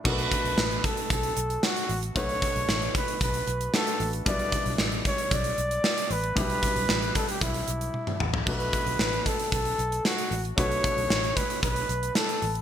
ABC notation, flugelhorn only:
X:1
M:4/4
L:1/16
Q:1/4=114
K:Bm
V:1 name="Flugelhorn"
B6 A2 A4 F3 z | c6 B2 B4 A3 z | d4 z2 c2 d6 B2 | B6 A G E6 z2 |
B6 A2 A4 F3 z | c6 B2 B4 A3 z |]